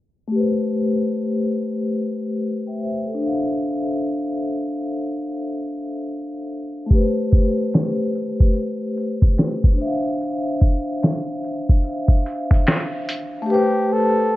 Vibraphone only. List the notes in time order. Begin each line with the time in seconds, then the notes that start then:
0.28 A3
0.32 G4 B4
0.40 C5
2.67 E5 G5
2.81 C5 E5
3.06 A4 C5
3.14 D4
3.18 C5
3.23 E5
3.27 F5
6.86 A3
6.91 G4 B4
6.99 C5
9.73 D4
9.77 C5 E5
9.85 F5
13.42 A3
13.46 G4
13.50 B4 C5